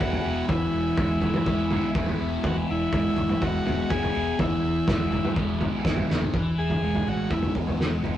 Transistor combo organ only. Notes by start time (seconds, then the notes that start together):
0.00 F#4
0.48 E4
2.47 F#4
2.71 E4
3.42 F#4
3.90 G#4
4.40 E4
6.59 G#4
7.08 F#4
7.32 E4